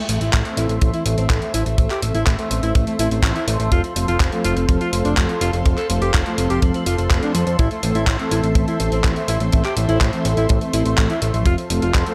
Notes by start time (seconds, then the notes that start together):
Already playing: A4 C5 E5 C6
0.09 A1 E3 A3 C4, closed hi-hat
0.21 A1 E4, closed hi-hat
0.33 A1 A3, kick, clap, closed hi-hat
0.45 E3 A3 C4 A4, closed hi-hat
0.57 A1 E4, closed hi-hat
0.69 A1 A3, closed hi-hat
0.81 A1 E3 A3 C4 A4, kick, closed hi-hat
0.94 E4, closed hi-hat
1.06 A1 E3 A3 C4 A4, closed hi-hat
1.18 A1 C4, closed hi-hat
1.30 A1 E3 A3 C4 A4, kick, clap, closed hi-hat
1.42 A3, closed hi-hat
1.54 A1 E4, closed hi-hat
1.66 A1 A3 A4, closed hi-hat
1.78 A1 A3, kick, closed hi-hat
1.90 G4, clap, closed hi-hat
2.02 A1 E3 A3 C4 A4, closed hi-hat
2.15 A1 E4, closed hi-hat
2.27 A1 A3, kick, clap, closed hi-hat
2.39 E3 A3 C4, closed hi-hat
2.51 A1 A3, closed hi-hat
2.63 A1 E4, closed hi-hat
2.75 A1 E3 A3 A4, kick, closed hi-hat
2.87 A3, closed hi-hat
2.99 A1 E3 A3 C4 E4 A4, closed hi-hat
3.11 A1 A3, closed hi-hat
3.23 A1 E3 A3 C4, kick, clap, closed hi-hat
3.36 E4, closed hi-hat
3.47 A1 A3, closed hi-hat
3.60 A1 F3 A3 C4 A4, closed hi-hat
3.72 F1 F4 F5, kick, closed hi-hat
3.84 F3, closed hi-hat
3.96 F1 F3 A3 C4 A4, closed hi-hat
4.08 F1 F4, closed hi-hat
4.20 F1 F3, kick, clap, closed hi-hat
4.32 F3 A3 C4 A4, closed hi-hat
4.44 F1 F4, closed hi-hat
4.56 F1 F3, closed hi-hat
4.69 F1 F3 A3 C4 A4, kick, closed hi-hat
4.81 F4, closed hi-hat
4.93 F1 F3 A3 C4 A4, closed hi-hat
5.05 F1 D4, closed hi-hat
5.17 F1 F3 A3 C4 A4, kick, clap, closed hi-hat
5.29 F3, closed hi-hat
5.41 F1 F4, closed hi-hat
5.53 F1 F3 A3 C4 A4, closed hi-hat
5.65 F1 F3, kick, closed hi-hat
5.77 A4, clap, closed hi-hat
5.90 F1 F3 A3 C4 A4, closed hi-hat
6.02 F1 G4, closed hi-hat
6.14 F1 F3, kick, clap, closed hi-hat
6.26 F3 A3 C4 A4, closed hi-hat
6.38 F1 F3, closed hi-hat
6.50 F1 G4, closed hi-hat
6.62 F1 F3 A3 C4 A4, kick, closed hi-hat
6.74 F3, closed hi-hat
6.86 F1 F4, closed hi-hat
6.98 F1 F3, closed hi-hat
7.10 F1 F3 A3 C4 A4, kick, clap, closed hi-hat
7.22 F3 A3 C4 D4 A4, closed hi-hat
7.35 F2 F3, closed hi-hat
7.47 F2 F3, closed hi-hat
7.59 A1 E4 C5 E5, kick, closed hi-hat
7.71 A3, closed hi-hat
7.83 A1 E3 A3 C4 A4, closed hi-hat
7.95 A1 E4, closed hi-hat
8.07 A1 A3, kick, clap, closed hi-hat
8.19 E3 A3 C4 A4, closed hi-hat
8.31 A1 E4, closed hi-hat
8.44 A1 A3, closed hi-hat
8.55 A1 E3 A3 C4 A4, kick, closed hi-hat
8.68 E4, closed hi-hat
8.80 A1 E3 A3 C4 A4, closed hi-hat
8.92 A1 C4, closed hi-hat
9.04 A1 A3 C4, kick, clap, closed hi-hat
9.16 A3, closed hi-hat
9.28 A1 E4, closed hi-hat
9.40 A1 E3 A3 C4 A4, closed hi-hat
9.52 A1 A3, kick, closed hi-hat
9.65 G4, clap, closed hi-hat
9.77 A1 E3 A3 C4 A4, closed hi-hat
9.89 A1 E4, closed hi-hat
10.01 A1 A3, kick, clap, closed hi-hat
10.13 E3 A3 C4 A4, closed hi-hat
10.25 A1 A3, closed hi-hat
10.37 A1 E4, closed hi-hat
10.49 A1 A3, kick, closed hi-hat
10.61 A3, closed hi-hat
10.73 A1 E3 A3 C4 E4 A4, closed hi-hat
10.85 A1 A3, closed hi-hat
10.98 A1 E3 A3 A4, kick, clap, closed hi-hat
11.10 E4, closed hi-hat
11.22 A1 A3, closed hi-hat
11.34 A1 F3 A3 C4 A4, closed hi-hat
11.46 F1 F4 A4 C5 F5 C6, kick, closed hi-hat
11.58 F3, closed hi-hat
11.70 F1 F3 A3 C4 A4, closed hi-hat
11.82 F1 F4, closed hi-hat
11.94 F1 F3, kick, clap, closed hi-hat
12.06 F3 A3 C4 A4, closed hi-hat